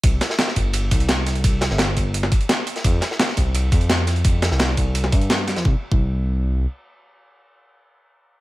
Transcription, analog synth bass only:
\new Staff \with { instrumentName = "Analog synth bass" } { \clef bass \time 4/4 \key f \lydian \tempo 4 = 171 c,8 r4 g,,4 c,4.~ | c,8. g,,8. g,,4 r4. | f,8 r4 c,4 f,4.~ | f,8. c,8. c,4 g,4~ g,16 f,16 |
c,16 r8 c,2~ c,16 r4 | r1 | }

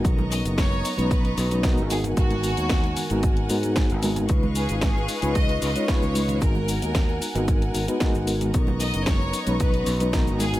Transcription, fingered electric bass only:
\new Staff \with { instrumentName = "Fingered electric bass" } { \clef bass \time 4/4 \key b \lydian \tempo 4 = 113 b,,8. fis,,8. r16 b,,8. b,,8. gis,,8. | gis,,8. dis,8. r16 gis,,8. gis,8. gis,,8. | cis,8. gis,,8. r16 cis,8. cis,16 r8 cis,8. | gis,,8. dis,8. r16 gis,,8. gis,,16 r8 gis,,8. |
b,,8. fis,,8. r16 b,,8. b,,8. gis,,8. | }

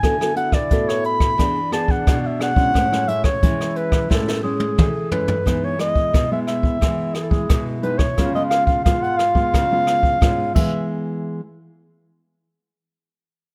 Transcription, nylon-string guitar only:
\new Staff \with { instrumentName = "Nylon-string guitar" } { \time 4/4 \key a \major \tempo 4 = 88 << { <b fis' a'>16 <b fis' a'>16 <b fis' a'>16 r16 <b fis' a'>4 <b d' gis'>16 r16 <b d' gis'>8. r16 <b d' gis'>16 <gis cis' e'>16~ | <gis cis' e'>16 <gis cis' e'>16 <gis cis' e'>16 r16 <gis cis' e'>4 <gis cis' e'>8 <gis cis' e'>8. r16 <gis cis' e'>16 r16 | \key e \major <gis b dis'>8 <gis b>8. <gis b>8. <gis b>8 r16 <gis b>8. <gis b dis'>16 r16 | <gis b eis'>16 <gis b eis'>8. <gis b eis'>8 r16 <gis b eis'>8 <gis b eis'>8. <gis b eis'>8 <e gis b>8 |
r1 | } \\ { d4 a,4 e4 b,4 | a,4 e4 a,4 e4 | e4 b,4 e4 b,4 | cis4 gis,4 cis4 gis,8 r8 |
r1 | } >> }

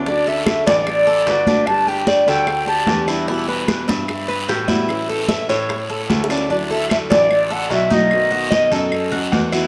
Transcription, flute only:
\new Staff \with { instrumentName = "Flute" } { \time 4/4 \key d \major \tempo 4 = 149 d''8 e''8 e''8 d''2~ d''8 | a''8 g''4 g''4 a''4 r8 | r1 | r1 |
d''8 e''8 e''8 d''4 fis''8 e''8 ees''8~ | ees''4. r2 r8 | }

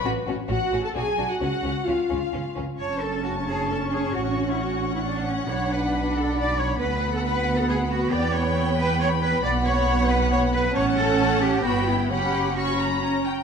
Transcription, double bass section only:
\new Staff \with { instrumentName = "Double bass section" } { \clef bass \time 3/4 \key fis \minor \tempo 4 = 134 a,,8 a,,8 a,,8 a,,8 b,,8 b,,8 | cis,8 cis,8 cis,8 cis,8 cis,8 cis,8 | fis,,2. | a,,2. |
b,,2. | d,2. | \key fis \phrygian e,2. | b,,2. |
a,,2 g,,4 | fis,,2~ fis,,8 r8 | }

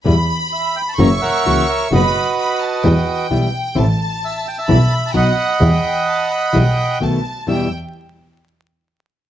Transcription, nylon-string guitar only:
\new Staff \with { instrumentName = "Nylon-string guitar" } { \clef bass \time 4/4 \key e \minor \tempo 4 = 130 <b, e g b e'>8 r4. <cis e ais cis' fis'>8 r8 <cis e ais cis' fis'>8 r8 | <b, fis b dis' fis'>8 r4. <b, e g b e'>8 r8 <b, e g b e'>8 r8 | <e b c' e'>8 r4. <b, e g b e'>8 r8 <b, fis b dis' fis'>8 r8 | <b, e g b e'>8 r4. <b, e g b e'>8 r8 <b, dis a b fis'>8 r8 |
<e, b, e g b e'>8 r2. r8 | }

